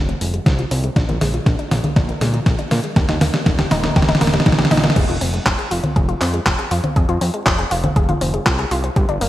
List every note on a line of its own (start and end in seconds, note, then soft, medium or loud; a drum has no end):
0.00 0.15 F1 medium
0.09 0.21 C4 medium
0.09 closed hi-hat soft
0.21 0.40 F1 medium
0.21 0.33 G#3 loud
0.21 open hi-hat loud
0.34 0.43 G3 medium
0.34 closed hi-hat soft
0.46 0.65 C2 loud
0.46 0.58 F3 medium
0.46 kick loud
0.46 snare medium
0.46 closed hi-hat medium
0.59 0.68 F4 medium
0.59 closed hi-hat soft
0.71 0.90 C2 medium
0.71 0.77 C4 loud
0.71 open hi-hat loud
0.84 0.96 G#3 medium
0.84 closed hi-hat soft
0.96 1.06 A#1 loud
0.96 1.08 D4 medium
0.96 kick loud
0.96 snare medium
0.96 closed hi-hat medium
1.09 1.18 A#1 medium
1.09 1.21 A#3 medium
1.09 closed hi-hat soft
1.09 high conga medium
1.21 1.40 A#1 medium
1.21 1.33 G#3 loud
1.21 snare medium
1.21 open hi-hat loud
1.34 1.43 F3 medium
1.34 closed hi-hat soft
1.46 1.56 A#1 loud
1.46 1.58 D3 medium
1.46 kick loud
1.46 snare medium
1.46 closed hi-hat medium
1.59 1.68 D4 medium
1.59 closed hi-hat soft
1.71 1.81 A#1 medium
1.71 1.77 A#3 loud
1.71 snare medium
1.71 open hi-hat loud
1.84 1.96 G#3 medium
1.84 closed hi-hat soft
1.84 high conga medium
1.96 2.15 A#1 loud
1.96 2.08 D4 medium
1.96 kick loud
1.96 snare medium
1.96 closed hi-hat medium
2.09 2.21 A#3 medium
2.09 closed hi-hat soft
2.21 2.40 A#2 loud
2.21 2.33 G#3 loud
2.21 snare medium
2.21 open hi-hat loud
2.21 high conga medium
2.34 2.43 F3 medium
2.34 closed hi-hat soft
2.46 2.56 A#1 medium
2.46 2.58 D3 medium
2.46 kick loud
2.46 snare medium
2.46 closed hi-hat medium
2.59 2.68 D4 medium
2.59 closed hi-hat soft
2.71 2.81 A#2 loud
2.71 2.77 A#3 loud
2.71 snare medium
2.71 open hi-hat loud
2.84 2.96 G#3 medium
2.84 closed hi-hat soft
2.96 3.06 D#2 medium
2.96 3.08 G4 medium
2.96 kick loud
2.96 snare medium
2.96 closed hi-hat medium
3.09 3.18 D#2 medium
3.09 3.21 D#4 medium
3.09 snare medium
3.09 closed hi-hat soft
3.09 high conga medium
3.21 3.31 D#2 medium
3.21 3.33 A#3 loud
3.21 snare loud
3.21 open hi-hat loud
3.34 3.43 G3 medium
3.34 snare medium
3.34 closed hi-hat soft
3.46 3.65 D#1 medium
3.46 3.58 D#3 medium
3.46 kick loud
3.46 snare loud
3.46 closed hi-hat medium
3.59 3.68 G4 medium
3.59 snare medium
3.59 closed hi-hat soft
3.71 3.90 D#1 loud
3.71 3.77 D#4 loud
3.71 snare loud
3.71 open hi-hat loud
3.84 3.96 A#3 medium
3.84 snare medium
3.84 closed hi-hat soft
3.84 high conga medium
3.96 4.15 D#1 medium
3.96 4.08 G4 medium
3.96 kick loud
3.96 snare loud
3.96 closed hi-hat medium
4.02 snare medium
4.09 4.21 D#4 medium
4.09 snare medium
4.09 closed hi-hat soft
4.15 snare medium
4.21 4.40 D#1 medium
4.21 4.33 A#3 loud
4.21 snare loud
4.21 open hi-hat loud
4.27 snare medium
4.34 4.43 G3 medium
4.34 snare medium
4.34 closed hi-hat soft
4.40 snare medium
4.46 4.65 A#1 loud
4.46 4.58 D#3 medium
4.46 kick loud
4.46 snare loud
4.46 closed hi-hat medium
4.52 snare loud
4.59 4.68 G4 medium
4.59 snare medium
4.59 closed hi-hat soft
4.65 snare medium
4.71 4.90 A#1 medium
4.71 4.77 D#4 loud
4.71 snare loud
4.71 open hi-hat loud
4.77 snare loud
4.84 4.96 A#3 medium
4.84 snare loud
4.84 closed hi-hat soft
4.90 snare medium
4.96 5.06 F1 loud
4.96 5.08 G#4 medium
4.96 kick loud
4.96 closed hi-hat medium
4.96 crash loud
5.09 5.18 F1 medium
5.09 5.21 F4 medium
5.09 closed hi-hat soft
5.21 5.40 F1 medium
5.21 5.33 C4 loud
5.21 open hi-hat loud
5.34 5.43 G#3 medium
5.34 closed hi-hat soft
5.46 5.56 F1 loud
5.46 5.58 F3 medium
5.46 kick loud
5.46 clap loud
5.46 closed hi-hat medium
5.59 5.68 G#4 medium
5.59 closed hi-hat soft
5.71 5.81 F1 medium
5.71 5.77 F4 loud
5.71 open hi-hat loud
5.83 5.95 C4 medium
5.83 closed hi-hat soft
5.83 high conga medium
5.96 6.15 F1 loud
5.96 6.08 G#4 medium
5.96 kick loud
5.96 closed hi-hat medium
6.09 6.21 F4 medium
6.09 closed hi-hat soft
6.21 6.40 F2 loud
6.21 6.33 C4 loud
6.21 clap medium
6.21 open hi-hat loud
6.34 6.43 G#3 medium
6.34 closed hi-hat soft
6.46 6.56 F1 medium
6.46 6.58 F3 medium
6.46 kick loud
6.46 clap loud
6.46 closed hi-hat medium
6.59 6.68 G#4 medium
6.59 closed hi-hat soft
6.71 6.81 F2 loud
6.71 6.77 F4 loud
6.71 open hi-hat loud
6.84 6.96 C4 medium
6.84 closed hi-hat soft
6.84 high conga medium
6.96 7.06 F2 medium
6.96 7.08 G#4 medium
6.96 kick loud
6.96 closed hi-hat medium
7.09 7.18 F2 loud
7.09 7.21 F4 medium
7.09 closed hi-hat soft
7.21 7.31 F2 medium
7.21 7.33 C4 loud
7.21 open hi-hat loud
7.34 7.43 G#3 medium
7.34 closed hi-hat soft
7.46 7.65 F1 medium
7.46 7.58 F3 medium
7.46 kick loud
7.46 clap loud
7.46 closed hi-hat medium
7.59 7.68 G#4 medium
7.59 closed hi-hat soft
7.71 7.90 F1 loud
7.71 7.77 F4 loud
7.71 open hi-hat loud
7.84 7.96 C4 medium
7.84 closed hi-hat soft
7.84 high conga medium
7.96 8.15 F1 medium
7.96 8.08 G#4 medium
7.96 kick loud
7.96 closed hi-hat medium
8.09 8.21 F4 medium
8.09 closed hi-hat soft
8.09 high conga medium
8.21 8.40 F1 medium
8.21 8.33 C4 loud
8.21 open hi-hat loud
8.34 8.43 G#3 medium
8.34 closed hi-hat soft
8.46 8.65 C2 loud
8.46 8.58 F3 medium
8.46 kick loud
8.46 clap loud
8.46 closed hi-hat medium
8.59 8.68 G#4 medium
8.59 closed hi-hat soft
8.71 8.90 C2 medium
8.71 8.77 F4 loud
8.71 open hi-hat loud
8.84 8.96 C4 medium
8.84 closed hi-hat soft
8.96 9.06 G1 loud
8.96 9.08 G4 medium
8.96 kick loud
8.96 closed hi-hat medium
9.09 9.18 G1 medium
9.09 9.21 D4 medium
9.09 closed hi-hat soft
9.21 9.29 G1 medium
9.21 9.29 A#3 loud
9.21 open hi-hat loud